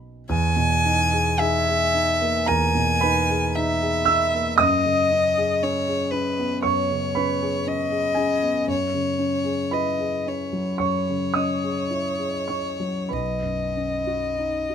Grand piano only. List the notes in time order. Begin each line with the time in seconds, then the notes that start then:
Already playing: B1 A#3 C#4 F#4 D#5
0.29 E2
0.56 B2
0.85 D#4
1.12 G#4
1.38 D#4 G#4 G#5
1.68 G#4
1.94 D#4
2.22 A#3
2.46 E2 A#4 A#5
2.75 B2
3.01 D#4 B4 B5
3.30 G#4
3.57 D#4
3.82 G#4
4.05 D#4 E5 E6
4.34 A#3
4.58 F#2 D#5 D#6
4.85 C#3
5.11 C#4
5.38 G#4
5.63 C#4
5.88 G#4
6.12 C#4
6.39 B3
6.63 F#2 C#5 C#6
6.91 C#3
7.15 C#4 B4 B5
7.42 G#4
7.66 C#4
7.91 G#4
8.15 C#4 G#4 G#5
8.43 B3
8.67 F#2
8.94 C#3
9.19 C#4
9.45 G#4
9.71 E4 B4 B5
9.99 G#4
10.27 C#4
10.53 F#3
10.78 F#2 C#5 C#6
11.08 C#3
11.34 C#4 D#5 D#6
11.64 G#4
11.90 E4
12.19 G#4
12.48 C#4 C#5 C#6
12.80 F#3
13.09 B1 B4 B5
13.42 F#2
13.76 C#4
14.07 F#4
14.38 D#4
14.70 F#4